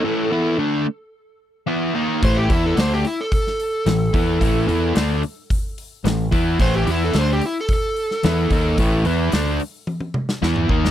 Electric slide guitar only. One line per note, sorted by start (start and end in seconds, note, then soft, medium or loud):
0.00 0.56 A4 medium
2.25 2.37 C5 medium
2.37 2.50 G4 medium
2.51 2.64 E4 medium
2.66 2.78 A4 medium
2.80 2.92 C5 medium
2.94 3.05 G4 medium
3.07 3.19 E4 medium
3.21 3.32 A4 medium
3.33 4.92 A4 medium
6.62 6.74 C5 medium
6.75 6.87 G4 medium
6.91 7.02 E4 medium
7.05 7.16 A4 medium
7.18 7.30 C5 medium
7.33 7.44 G4 medium
7.46 7.57 E4 medium
7.61 7.71 A4 medium
7.73 8.77 A4 loud